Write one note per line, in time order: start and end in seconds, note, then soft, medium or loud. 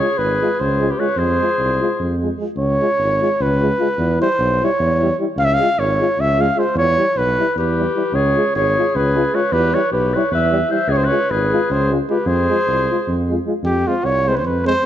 0.00 0.09 F4 medium
0.00 0.18 G#4 loud
0.00 0.19 C#5 loud
0.18 0.41 G#1 medium
0.18 0.61 G#4 medium
0.18 0.61 B4 medium
0.41 0.49 G#3 medium
0.41 0.49 F4 medium
0.60 0.91 C#2 medium
0.60 0.92 G#4 medium
0.60 0.93 C5 medium
0.80 0.87 G#3 medium
0.80 0.88 F4 medium
0.90 1.01 G4 medium
0.90 1.00 B4 medium
0.98 1.07 G#3 medium
0.98 1.07 F4 medium
0.98 1.20 B4 medium
0.98 1.18 C#5 medium
1.16 1.39 F2 loud
1.16 2.22 G#4 medium
1.16 2.21 C5 loud
1.40 1.47 G#3 medium
1.40 1.50 F4 medium
1.58 1.81 C2 medium
1.81 1.89 G#3 medium
1.81 1.89 F4 medium
2.00 2.31 F2 medium
2.22 2.29 G#3 medium
2.22 2.30 F4 soft
2.39 2.46 G#3 medium
2.39 2.49 F4 soft
2.56 2.79 C#2 medium
2.56 3.43 C#5 loud
2.80 2.87 G#3 medium
2.80 2.89 F4 medium
2.99 3.21 G#1 medium
3.21 3.29 G#3 medium
3.21 3.29 F4 medium
3.40 3.71 C#2 loud
3.40 4.20 B4 medium
3.62 3.69 G#3 medium
3.62 3.69 F4 medium
3.79 3.87 G#3 medium
3.79 3.86 F4 medium
3.98 4.20 E2 loud
4.20 4.28 G3 medium
4.20 4.27 E4 medium
4.20 4.66 C5 loud
4.38 4.61 B1 loud
4.62 4.70 G3 medium
4.62 4.69 E4 medium
4.62 5.20 C#5 loud
4.80 5.11 E2 loud
5.00 5.08 G3 medium
5.00 5.07 E4 medium
5.19 5.26 G3 medium
5.19 5.26 E4 medium
5.37 5.59 C#2 loud
5.37 5.46 F5 loud
5.45 5.55 E5 loud
5.54 5.80 F5 loud
5.59 5.67 G#3 medium
5.59 5.68 F4 medium
5.78 6.00 G#1 loud
5.78 6.22 C#5 loud
5.99 6.07 G#3 medium
5.99 6.08 F4 medium
6.18 6.49 C#2 medium
6.18 6.42 E5 loud
6.39 6.46 G#3 medium
6.39 6.46 F4 medium
6.39 6.60 F5 loud
6.57 6.64 G#3 medium
6.57 6.64 F4 medium
6.57 6.75 C5 medium
6.75 6.97 E2 loud
6.75 7.19 C#5 loud
6.97 7.05 G3 medium
6.97 7.05 E4 medium
7.15 7.38 B1 medium
7.15 7.58 B4 loud
7.39 7.46 G3 medium
7.39 7.46 E4 medium
7.56 7.87 E2 medium
7.56 8.17 G4 medium
7.56 8.16 B4 medium
7.78 7.85 G3 medium
7.78 7.85 E4 medium
7.95 8.02 G3 medium
7.95 8.02 E4 medium
8.13 8.35 C#2 loud
8.13 8.54 G#4 loud
8.13 8.55 C#5 loud
8.36 8.44 G#3 medium
8.36 8.43 F4 medium
8.55 8.77 G#1 medium
8.55 8.97 G#4 medium
8.55 8.97 C#5 loud
8.77 8.84 G#3 medium
8.77 8.85 F4 medium
8.95 9.26 C#2 medium
8.95 9.36 G#4 medium
8.95 9.36 B4 medium
9.15 9.22 G#3 medium
9.15 9.23 F4 medium
9.33 9.40 G#3 medium
9.33 9.41 F4 medium
9.33 9.54 B4 medium
9.33 9.54 C#5 medium
9.52 9.74 E2 loud
9.52 9.76 G4 medium
9.52 9.76 B4 loud
9.73 9.81 G3 medium
9.73 9.80 E4 medium
9.73 9.91 B4 medium
9.73 9.92 C#5 medium
9.91 10.14 B1 medium
9.91 10.15 G4 medium
9.91 10.18 B4 medium
10.14 10.21 G3 medium
10.14 10.23 E4 medium
10.14 10.31 B4 medium
10.14 10.34 C#5 medium
10.31 10.62 E2 loud
10.31 10.68 B4 medium
10.31 10.69 E5 medium
10.52 10.59 G3 medium
10.52 10.60 E4 medium
10.70 10.77 G3 medium
10.70 10.77 E4 medium
10.70 10.90 C5 medium
10.70 10.93 E5 medium
10.88 11.10 C#2 loud
10.88 10.94 G#4 medium
10.92 11.06 G#4 medium
10.92 10.99 C#5 loud
10.97 11.09 C5 medium
11.04 11.32 B4 medium
11.04 11.32 C#5 loud
11.09 11.17 G#3 medium
11.09 11.19 F4 medium
11.29 11.52 G#1 loud
11.29 11.71 G#4 medium
11.29 11.73 B4 medium
11.51 11.59 G#3 medium
11.51 11.60 F4 medium
11.70 12.01 C#2 loud
11.70 11.91 G#4 medium
11.70 11.92 C5 medium
11.90 11.97 G#3 medium
11.90 11.99 F4 medium
12.09 12.16 G#3 medium
12.09 12.17 F4 medium
12.09 12.28 G4 medium
12.09 12.29 B4 medium
12.26 12.48 F2 loud
12.26 13.28 G#4 medium
12.26 13.29 C5 loud
12.49 12.56 G#3 medium
12.49 12.58 F4 medium
12.67 12.90 C2 medium
12.90 12.97 G#3 soft
12.90 12.98 F4 medium
13.07 13.38 F2 loud
13.29 13.36 G#3 medium
13.29 13.37 F4 medium
13.46 13.53 G#3 medium
13.46 13.54 F4 medium
13.63 13.85 F2 loud
13.63 13.89 G4 loud
13.86 13.93 G#3 medium
13.86 13.96 C4 medium
13.86 14.06 F4 medium
14.04 14.46 C2 medium
14.04 14.30 C#5 loud
14.27 14.34 G#3 medium
14.27 14.36 C4 medium
14.27 14.33 C5 medium
14.32 14.38 B4 medium
14.37 14.45 C5 medium
14.44 14.75 F2 medium
14.44 14.64 B4 medium
14.66 14.73 G#3 medium
14.66 14.73 C4 medium
14.66 14.86 C5 loud
14.82 14.86 G#3 medium
14.82 14.86 C4 medium